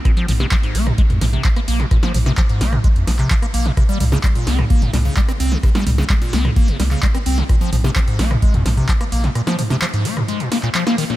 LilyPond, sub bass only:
\new Staff \with { instrumentName = "Sub bass" } { \clef bass \time 4/4 \key bes \dorian \tempo 4 = 129 r8 bes,,16 r8. bes,,16 r8 f,16 bes,,16 r8. bes,,16 r16 | r8 bes,,16 r8. bes,,16 r8 f,16 bes,,16 r8. bes,,16 r16 | r8 c,16 r8. c,16 r8 g,,16 c,16 r8. c,16 r16 | r8 c,16 r8. c,16 r8 g,,16 c,16 r8. c,16 r16 |
r8 bes,,16 r8. bes,,16 r8 f,16 bes,,16 r8. bes,,16 r16 | r1 | }